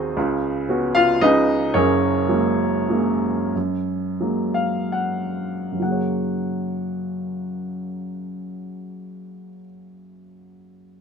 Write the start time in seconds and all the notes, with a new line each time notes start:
Already playing: D#2 D#3 C4 D#4 F#4 G#4 C5 D#5
0.17 C#2 C#3
0.69 B3 C#4 F#4
0.95 F4 F5
1.21 C#2 C#3 D#4 G#4 B4 D#5
1.74 F#1 F#2 C#4 G#4 A#4 C#5
2.29 F#3 G#3 A#3
2.90 F#3 G#3 A#3
3.56 F#2
4.21 F#3 G#3 A#3
4.54 F5
4.92 F#5
5.72 F#2 C#3
5.80 F#3 A#3 F#5
5.87 G#4
5.91 C#5